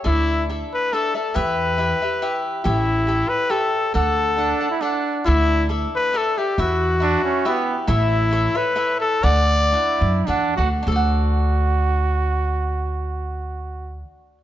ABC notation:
X:1
M:3/4
L:1/16
Q:1/4=137
K:D
V:1 name="Cavaquinho"
[DAde]4 [DAde]4 [DAde]2 [Ade]2 | [EGBe]4 [EGBe]2 [GBe]2 [EGBe]4 | [GAce]4 [GAce]4 [GAce]4 | [DAdf]4 [DAdf]2 [Adf]2 [DAdf]4 |
[DAde]4 [DAde]4 [DAde]2 [Ade]2 | [EBe]4 [EBe]4 [EGBe]4 | [EAce]4 [EAce]2 [Ace]2 [EAce]4 | [DAdf]4 [DAdf]4 [DAdf]2 [Adf]2 |
[DAdf]12- | [DAdf]12 |]
V:2 name="Trumpet"
E4 z2 B2 A2 A2 | B8- B2 z2 | E6 B2 A4 | A8 z4 |
E4 z2 B2 A2 G2 | F8- F2 z2 | E6 B4 A2 | d8 z4 |
z12 | z12 |]
V:3 name="Trumpet"
z12 | z12 | z12 | z4 D3 E D4 |
z12 | z4 D2 C2 B,3 z | z12 | z4 E4 D2 F2 |
F12- | F12 |]
V:4 name="Upright bass" clef=bass
D,,8 z4 | E,,8 z4 | A,,,8 z4 | D,,8 z4 |
D,,8 z4 | E,,8 z4 | A,,,8 z4 | D,,6 F,,2 E,,2 D,,2 |
D,,12- | D,,12 |]